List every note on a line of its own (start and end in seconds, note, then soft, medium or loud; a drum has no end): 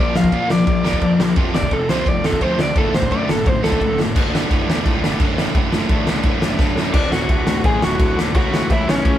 0.00 0.11 A#1 medium
0.00 0.84 A#2 medium
0.00 0.84 F3 medium
0.00 0.84 A#3 medium
0.00 0.84 D4 loud
0.00 0.84 F4 medium
0.00 0.83 A#4 loud
0.00 0.16 D5 medium
0.14 0.28 A#1 medium
0.14 0.29 A#2 medium
0.14 0.30 F3 medium
0.14 0.50 F5 medium
0.14 snare loud
0.24 kick loud
0.30 0.46 A#2 loud
0.30 0.45 A#2 medium
0.30 0.47 F3 loud
0.30 0.48 A#3 medium
0.30 kick medium
0.30 ride medium
0.47 0.63 A#1 medium
0.47 0.64 A#2 medium
0.47 0.64 F3 medium
0.47 1.18 D5 loud
0.47 snare loud
0.65 0.80 A#1 medium
0.65 0.82 A#2 medium
0.65 0.82 F3 medium
0.65 kick loud
0.65 ride medium
0.83 0.98 F1 medium
0.83 1.00 A#2 medium
0.83 1.01 F3 medium
0.83 1.02 A#3 medium
0.83 1.01 D4 medium
0.83 1.01 F4 medium
0.83 1.01 A#4 medium
0.83 snare loud
0.87 1.00 A#2 medium
0.93 kick loud
1.01 1.15 F2 medium
1.01 1.35 A#2 medium
1.01 1.36 F3 medium
1.01 1.36 A#3 loud
1.01 1.37 D4 loud
1.01 1.37 F4 medium
1.01 1.37 A#4 medium
1.01 kick loud
1.01 ride medium
1.19 1.32 A#1 medium
1.19 1.35 A#2 medium
1.19 1.35 F3 medium
1.19 snare loud
1.36 1.49 F1 medium
1.36 2.22 F2 medium
1.36 2.23 C3 loud
1.36 2.23 F3 medium
1.36 2.24 A3 medium
1.36 2.23 C4 loud
1.36 2.22 F4 loud
1.36 kick loud
1.36 ride medium
1.53 1.67 F1 loud
1.53 1.70 F2 medium
1.53 1.70 C3 medium
1.53 1.72 D5 medium
1.53 snare loud
1.63 kick medium
1.71 1.84 F1 medium
1.71 1.86 F2 medium
1.71 1.87 C3 medium
1.71 1.89 A4 loud
1.71 kick loud
1.71 ride medium
1.87 2.02 C2 medium
1.87 2.03 F2 medium
1.87 2.04 C3 loud
1.87 2.06 F3 medium
1.87 2.07 C5 medium
1.87 snare loud
2.04 2.19 F1 medium
2.04 2.21 F2 medium
2.04 2.22 C3 medium
2.04 kick loud
2.04 ride medium
2.09 2.25 D5 medium
2.23 2.36 F1 medium
2.23 2.39 F2 medium
2.23 2.40 C3 medium
2.23 2.41 F3 medium
2.23 2.42 A3 medium
2.23 2.40 C4 medium
2.23 2.40 F4 medium
2.23 2.42 A4 medium
2.23 snare loud
2.33 kick loud
2.41 2.54 D2 medium
2.41 2.74 F2 medium
2.41 2.75 C3 medium
2.41 2.76 F3 loud
2.41 2.77 A3 medium
2.41 2.76 C4 loud
2.41 2.76 F4 medium
2.41 2.60 C5 medium
2.41 kick loud
2.41 ride medium
2.57 2.70 D2 loud
2.57 2.74 F2 medium
2.57 2.74 C3 medium
2.57 2.77 D5 loud
2.57 snare loud
2.75 2.88 F#1 medium
2.75 3.62 D2 medium
2.75 3.62 A2 medium
2.75 3.62 D3 medium
2.75 3.62 A3 loud
2.75 3.62 F#4 loud
2.75 2.94 A4 loud
2.75 kick loud
2.75 ride medium
2.92 3.06 F#1 medium
2.92 3.09 D2 medium
2.92 3.09 A2 medium
2.92 3.12 C5 loud
2.92 snare loud
3.02 kick loud
3.10 3.26 D2 loud
3.10 3.24 F#2 medium
3.10 3.26 A2 loud
3.10 3.28 D3 loud
3.10 3.28 D5 loud
3.10 kick medium
3.10 ride medium
3.27 3.41 F#1 medium
3.27 3.44 D2 medium
3.27 3.44 A2 medium
3.27 3.47 A4 medium
3.27 snare loud
3.45 3.59 F#1 medium
3.45 3.61 D2 medium
3.45 3.62 A2 medium
3.45 3.63 C5 loud
3.45 kick loud
3.45 ride medium
3.63 3.76 C#2 medium
3.63 3.79 D2 medium
3.63 3.80 A2 medium
3.63 3.80 D3 medium
3.63 3.80 A3 medium
3.63 3.80 F#4 medium
3.63 3.98 A4 loud
3.63 snare loud
3.72 kick loud
3.80 3.94 C#2 medium
3.80 4.14 D2 medium
3.80 4.15 A2 medium
3.80 4.15 D3 medium
3.80 4.15 A3 loud
3.80 4.16 F#4 loud
3.80 kick medium
3.80 ride medium
3.97 4.10 F#1 loud
3.97 4.14 D2 medium
3.97 4.14 A2 medium
3.97 snare medium
4.16 4.42 F#1 medium
4.16 4.32 D2 loud
4.16 4.33 A2 loud
4.16 4.33 D3 loud
4.16 kick loud
4.16 crash loud
4.16 crash medium
4.33 4.49 D2 medium
4.33 4.50 A2 loud
4.33 4.50 D3 loud
4.33 snare loud
4.50 4.64 F#1 medium
4.50 4.66 D2 medium
4.50 4.67 A2 medium
4.50 4.67 D3 medium
4.50 kick loud
4.50 crash medium
4.67 4.84 D2 medium
4.67 4.81 E2 medium
4.67 4.84 A2 medium
4.67 4.85 D3 medium
4.67 snare loud
4.85 4.99 C#2 medium
4.85 5.02 D2 medium
4.85 5.02 A2 loud
4.85 5.03 D3 loud
4.85 kick loud
4.85 crash medium
5.02 5.15 F#1 medium
5.02 5.19 D2 medium
5.02 5.20 A2 medium
5.02 5.20 D3 medium
5.02 snare loud
5.20 5.46 F#1 medium
5.20 5.37 D2 medium
5.20 5.37 A2 loud
5.20 5.38 D3 loud
5.20 kick loud
5.20 crash medium
5.38 5.54 D2 medium
5.38 5.55 A2 medium
5.38 5.56 D3 medium
5.38 snare loud
5.55 5.81 F#1 loud
5.55 5.71 D2 loud
5.55 5.72 A2 loud
5.55 5.73 D3 loud
5.55 kick loud
5.55 crash medium
5.72 5.90 D2 loud
5.72 5.90 A2 loud
5.72 5.91 D3 loud
5.72 snare loud
5.89 6.03 A1 medium
5.89 6.06 D2 medium
5.89 6.07 A2 medium
5.89 6.07 D3 medium
5.89 kick loud
5.89 crash medium
6.07 6.20 C#2 medium
6.07 6.24 D2 medium
6.07 6.25 A2 medium
6.07 6.25 D3 medium
6.07 snare loud
6.23 6.38 F#1 medium
6.23 6.41 D2 medium
6.23 6.41 A2 loud
6.23 6.42 D3 loud
6.23 kick loud
6.23 crash medium
6.41 6.55 F#1 medium
6.41 6.58 D2 medium
6.41 6.58 A2 medium
6.41 6.59 D3 medium
6.41 snare loud
6.59 6.72 F#1 medium
6.59 6.76 D2 medium
6.59 6.76 A2 loud
6.59 6.76 D3 medium
6.59 kick loud
6.59 snare medium
6.76 6.92 D2 medium
6.76 6.90 F#2 medium
6.76 6.93 A2 medium
6.76 6.93 D3 medium
6.76 snare medium
6.93 7.09 D1 medium
6.93 7.10 D2 loud
6.93 7.11 A2 loud
6.93 7.11 D3 loud
6.93 7.11 D4 medium
6.93 7.12 D5 medium
6.93 kick loud
6.93 crash loud
6.93 crash medium
7.11 7.27 D1 loud
7.11 7.28 D2 medium
7.11 7.28 A2 loud
7.11 7.29 D3 loud
7.11 7.61 F#4 medium
7.11 7.62 F#5 loud
7.11 snare loud
7.29 7.45 D1 medium
7.29 7.46 D2 medium
7.29 7.46 A2 medium
7.29 7.46 D3 loud
7.29 kick loud
7.29 crash medium
7.47 7.62 D1 medium
7.47 7.63 D2 medium
7.47 7.63 A2 medium
7.47 7.64 D3 medium
7.47 snare loud
7.64 7.79 A1 medium
7.64 7.81 D2 medium
7.64 7.82 A2 loud
7.64 7.82 D3 loud
7.64 7.81 G#4 medium
7.64 7.84 G#5 medium
7.64 kick loud
7.64 crash medium
7.82 7.97 D1 medium
7.82 7.99 D2 medium
7.82 7.99 A2 loud
7.82 8.00 D3 loud
7.82 8.16 F#4 medium
7.82 8.18 F#5 medium
7.82 snare loud
7.99 8.15 D1 medium
7.99 8.16 D2 loud
7.99 8.17 A2 loud
7.99 8.17 D3 loud
7.99 kick loud
7.99 crash medium
8.17 8.32 D1 medium
8.17 8.34 D2 medium
8.17 8.33 A2 medium
8.17 8.34 D3 loud
8.17 snare loud
8.34 8.50 C#2 loud
8.34 8.51 A2 medium
8.34 8.52 E3 loud
8.34 8.52 A3 loud
8.34 8.68 F#4 medium
8.34 8.71 F#5 medium
8.34 kick loud
8.34 crash medium
8.51 8.67 C#2 loud
8.51 8.68 A2 medium
8.51 8.70 E3 loud
8.51 8.69 A3 loud
8.51 snare loud
8.69 8.85 C#2 medium
8.69 8.85 A2 medium
8.69 8.86 E3 medium
8.69 8.87 A3 loud
8.69 8.87 E4 medium
8.69 8.88 E5 medium
8.69 kick loud
8.69 crash medium
8.86 9.02 B1 medium
8.86 9.03 A2 medium
8.86 9.04 E3 medium
8.86 9.04 A3 medium
8.86 9.18 C#4 medium
8.86 9.18 C#5 loud
8.86 snare loud
9.04 9.18 C#2 medium
9.04 9.18 A2 medium
9.04 9.18 E3 loud
9.04 9.18 A3 loud
9.04 kick loud
9.04 crash medium